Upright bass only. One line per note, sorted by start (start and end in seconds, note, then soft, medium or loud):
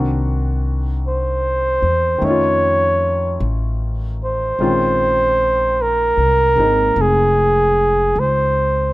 0.00 1.79 C2 medium
1.82 2.19 E2 medium
2.22 3.36 F2 medium
3.40 4.55 A1 medium
4.59 6.13 A#1 medium
6.17 6.54 C2 medium
6.56 6.93 G#1 medium
6.96 8.11 F1 medium
8.16 8.93 C#2 medium